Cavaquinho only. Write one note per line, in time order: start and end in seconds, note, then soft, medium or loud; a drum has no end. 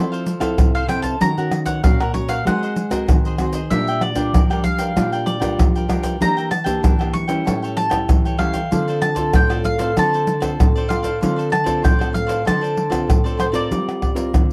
0.00 0.10 A4 medium
0.00 0.10 C5 medium
0.00 0.11 F5 medium
0.12 0.41 A4 medium
0.12 0.40 C5 medium
0.12 0.39 F5 medium
0.40 0.73 A4 medium
0.40 0.72 C5 medium
0.40 0.71 F5 medium
0.75 0.87 A4 medium
0.75 0.88 C5 medium
0.75 0.89 F5 medium
0.88 1.03 E4 soft
0.88 1.03 A4 medium
0.88 1.02 C5 medium
0.88 1.01 F5 medium
1.02 1.19 A4 medium
1.02 1.19 C5 medium
1.02 1.18 F5 medium
1.20 1.35 D#4 soft
1.20 1.36 A#4 soft
1.20 1.36 C#5 soft
1.20 1.36 F#5 medium
1.38 1.51 A#4 medium
1.38 1.51 C#5 medium
1.38 1.51 F#5 medium
1.52 muted cavaquinho stroke soft
1.65 1.82 A#4 medium
1.65 1.82 C#5 medium
1.65 1.81 F#5 medium
1.84 1.98 D#4 soft
1.84 1.98 A#4 soft
1.84 1.99 C#5 medium
1.84 1.99 F#5 medium
2.00 2.13 A#4 medium
2.00 2.14 C#5 medium
2.00 2.14 F#5 medium
2.14 muted cavaquinho stroke soft
2.29 2.45 A#4 medium
2.29 2.45 C#5 medium
2.29 2.44 F#5 medium
2.47 2.61 F#4 soft
2.47 2.61 G#4 medium
2.47 2.62 C5 medium
2.47 2.61 D#5 medium
2.63 2.91 G#4 medium
2.63 2.91 C5 medium
2.63 2.90 D#5 medium
2.91 3.23 G#4 medium
2.91 3.23 C5 medium
2.91 3.22 D#5 medium
3.25 3.39 G#4 medium
3.25 3.40 C5 medium
3.25 3.39 D#5 medium
3.40 3.54 F#4 medium
3.40 3.55 G#4 medium
3.40 3.54 C5 medium
3.40 3.53 D#5 medium
3.54 3.70 G#4 medium
3.54 3.70 C5 medium
3.54 3.69 D#5 medium
3.72 3.86 D4 soft
3.72 3.87 A#4 medium
3.72 3.87 D5 soft
3.72 3.87 G5 soft
3.88 4.01 A#4 medium
3.88 4.02 D5 medium
3.88 4.02 G5 medium
4.02 muted cavaquinho stroke soft
4.16 4.33 A#4 medium
4.16 4.32 D5 medium
4.16 4.32 G5 medium
4.34 4.49 D4 soft
4.34 4.49 A#4 soft
4.34 4.49 D5 soft
4.34 4.49 G5 medium
4.50 4.64 A#4 medium
4.50 4.64 D5 medium
4.50 4.64 G5 medium
4.64 muted cavaquinho stroke soft
4.79 4.95 A#4 medium
4.79 4.95 D5 medium
4.79 4.94 G5 medium
4.96 5.11 D4 medium
4.96 5.11 A#4 medium
4.96 5.12 D5 medium
4.96 5.11 G5 medium
5.12 5.41 A#4 medium
5.12 5.40 D5 medium
5.12 5.39 G5 medium
5.40 5.73 A#4 medium
5.40 5.73 D5 medium
5.40 5.72 G5 medium
5.75 5.89 A#4 medium
5.75 5.89 D5 medium
5.75 5.90 G5 medium
5.89 6.04 D4 medium
5.89 6.04 A#4 medium
5.89 6.03 D5 medium
5.89 6.02 G5 medium
6.03 6.20 A#4 medium
6.03 6.20 D5 medium
6.03 6.19 G5 medium
6.21 6.36 D4 soft
6.21 6.36 A#4 medium
6.21 6.36 E5 medium
6.21 6.36 G5 medium
6.37 6.50 A#4 medium
6.37 6.50 E5 medium
6.37 6.50 G5 medium
6.50 muted cavaquinho stroke soft
6.64 6.82 A#4 medium
6.64 6.82 E5 medium
6.64 6.81 G5 medium
6.83 6.98 D4 soft
6.83 6.98 A#4 soft
6.83 6.99 E5 soft
6.83 6.98 G5 medium
6.99 7.12 A#4 medium
6.99 7.13 E5 medium
6.99 7.13 G5 medium
7.13 muted cavaquinho stroke soft
7.27 7.45 A#4 medium
7.27 7.44 E5 medium
7.27 7.44 G5 medium
7.45 7.60 G4 soft
7.45 7.61 A4 medium
7.45 7.61 C#5 medium
7.45 7.61 G5 medium
7.62 7.91 A4 medium
7.62 7.90 C#5 medium
7.62 7.88 G5 medium
7.90 8.23 A4 medium
7.90 8.22 C#5 medium
7.90 8.22 G5 medium
8.25 8.38 A4 medium
8.25 8.39 C#5 medium
8.25 8.39 G5 medium
8.38 8.54 G4 soft
8.38 8.54 A4 medium
8.38 8.53 C#5 medium
8.38 8.52 G5 medium
8.53 8.70 A4 medium
8.53 8.70 C#5 medium
8.53 8.69 G5 medium
8.71 8.86 F4 soft
8.71 8.86 A4 soft
8.71 8.86 C5 soft
8.71 8.86 D5 medium
8.88 9.00 A4 medium
8.88 9.01 C5 medium
8.88 9.01 D5 medium
9.01 muted cavaquinho stroke soft
9.15 9.32 A4 medium
9.15 9.32 C5 medium
9.15 9.31 D5 medium
9.34 9.48 F4 soft
9.34 9.49 A4 medium
9.34 9.49 C5 medium
9.34 9.48 D5 medium
9.50 9.64 A4 medium
9.50 9.64 C5 medium
9.50 9.64 D5 medium
9.65 muted cavaquinho stroke soft
9.78 9.95 A4 medium
9.78 9.95 C5 medium
9.78 9.94 D5 medium
9.97 10.11 F4 medium
9.97 10.11 A4 medium
9.97 10.12 C5 medium
9.97 10.12 D5 medium
10.13 10.41 A4 medium
10.13 10.40 C5 medium
10.13 10.39 D5 medium
10.40 10.73 A4 medium
10.40 10.72 C5 medium
10.40 10.72 D5 medium
10.75 10.88 A4 medium
10.75 10.89 C5 medium
10.75 10.89 D5 medium
10.88 11.04 F4 medium
10.88 11.04 A4 medium
10.88 11.03 C5 medium
10.88 11.01 D5 medium
11.03 11.20 A4 medium
11.03 11.19 C5 medium
11.03 11.19 D5 medium
11.21 11.36 F4 soft
11.21 11.36 A4 medium
11.21 11.36 C5 soft
11.21 11.35 D5 medium
11.36 11.49 A4 medium
11.36 11.49 C5 medium
11.36 11.50 D5 medium
11.50 muted cavaquinho stroke soft
11.64 11.82 A4 medium
11.64 11.81 C5 medium
11.64 11.81 D5 medium
11.82 11.97 F4 soft
11.82 11.98 A4 soft
11.82 11.98 C5 medium
11.82 11.98 D5 medium
11.99 12.12 A4 medium
11.99 12.12 C5 medium
11.99 12.13 D5 medium
12.13 muted cavaquinho stroke soft
12.27 12.44 A4 medium
12.27 12.44 C5 medium
12.27 12.43 D5 medium
12.45 12.60 F4 medium
12.45 12.60 A4 medium
12.45 12.61 C5 medium
12.45 12.60 D5 medium
12.61 12.90 A4 medium
12.61 12.90 C5 medium
12.61 12.88 D5 medium
12.90 13.22 A4 medium
12.90 13.22 C5 medium
12.90 13.21 D5 medium
13.24 13.37 A4 medium
13.24 13.38 C5 medium
13.24 13.39 D5 medium
13.37 13.53 F4 medium
13.37 13.53 A4 medium
13.37 13.52 C5 medium
13.37 13.51 D5 medium
13.52 13.69 A4 medium
13.52 13.69 C5 medium
13.52 13.68 D5 medium